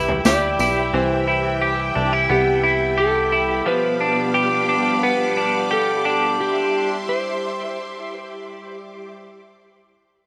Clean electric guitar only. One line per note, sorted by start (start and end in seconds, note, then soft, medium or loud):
0.00 0.92 E3 medium
0.00 0.34 B3 medium
0.00 0.59 E4 medium
0.00 0.25 G4 medium
0.26 1.61 G4 medium
0.60 1.26 E4 medium
0.94 3.66 E3 medium
1.28 1.95 E4 medium
1.62 2.97 G4 medium
1.95 2.13 D4 medium
2.13 2.62 E4 soft
2.30 5.03 B3 medium
2.63 3.31 E4 medium
2.98 4.34 G4 medium
3.32 3.73 E4 medium
3.66 6.39 F3 medium
4.01 4.68 D4 medium
4.34 5.70 G4 medium
4.69 5.37 D4 medium
5.03 6.46 B3 medium
5.37 6.05 D4 medium
5.71 6.96 G4 medium
6.05 6.96 D4 medium